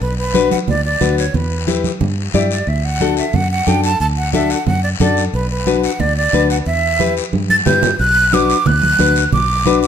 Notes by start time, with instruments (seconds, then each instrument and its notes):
0.01 fingered electric bass B1, flute B4, long guiro
0.18 flute B4
0.34 nylon-string guitar D4 F#4 B4, high conga, short guiro
0.51 flute F#5, high conga, short guiro
0.68 fingered electric bass D2, flute D5, low conga, long guiro
0.85 flute D5
1.00 fingered electric bass D2, nylon-string guitar D4 F#4 B4, high conga, short guiro
1.18 flute C#5, short guiro
1.34 fingered electric bass E2, flute B4, low conga, long guiro
1.67 nylon-string guitar E4 G4 B4, high conga, short guiro
1.84 high conga, short guiro
2.01 fingered electric bass G2, low conga, long guiro
2.34 fingered electric bass G2, nylon-string guitar E4 G4 D5, flute E5, high conga, short guiro
2.51 flute D5, short guiro
2.67 fingered electric bass D2, flute E5, long guiro
2.85 flute F#5
3.00 nylon-string guitar D4 F#4 A4, high conga, short guiro
3.17 flute E5, short guiro
3.33 fingered electric bass F#2, flute F#5, low conga, long guiro
3.51 flute F#5
3.67 fingered electric bass F#2, nylon-string guitar D4 F#4 A4, flute G5, high conga, short guiro
3.84 flute A5, short guiro
4.00 fingered electric bass D2, flute A5, long guiro
4.17 flute F#5
4.33 nylon-string guitar D4 F#4 A4, flute E5, high conga, short guiro
4.50 flute F#5, short guiro
4.67 fingered electric bass F#2, flute F#5, low conga, long guiro
4.83 flute D5
5.00 fingered electric bass F#2, nylon-string guitar D4 F#4 A4, flute D5, high conga, low conga, short guiro
5.17 short guiro
5.33 fingered electric bass B1, flute B4, long guiro
5.51 flute B4
5.67 nylon-string guitar D4 F#4 B4, high conga, short guiro
5.83 flute F#5, short guiro
6.00 fingered electric bass D2, flute D5, low conga, long guiro
6.17 flute D5
6.33 fingered electric bass D2, nylon-string guitar D4 F#4 B4, high conga, short guiro
6.50 flute F#5, short guiro
6.66 fingered electric bass E2, flute E5, long guiro
6.99 nylon-string guitar E4 G4 B4, high conga, short guiro
7.17 short guiro
7.33 fingered electric bass G2, high conga, long guiro
7.50 flute A6, high conga
7.66 fingered electric bass G2, nylon-string guitar E4 G4 B4, flute G6, low conga, short guiro
7.83 low conga, short guiro
7.99 fingered electric bass B1, flute F#6, long guiro
8.33 nylon-string guitar D4 F#4 B4, flute D6, high conga, short guiro
8.50 short guiro
8.66 fingered electric bass D2, flute F#6, low conga, long guiro
8.83 high conga
8.99 fingered electric bass D2, nylon-string guitar D4 F#4 B4, high conga, short guiro
9.16 short guiro
9.32 fingered electric bass B1, flute D6, low conga, long guiro
9.66 nylon-string guitar D4 F#4 B4, high conga, short guiro
9.83 flute D6, short guiro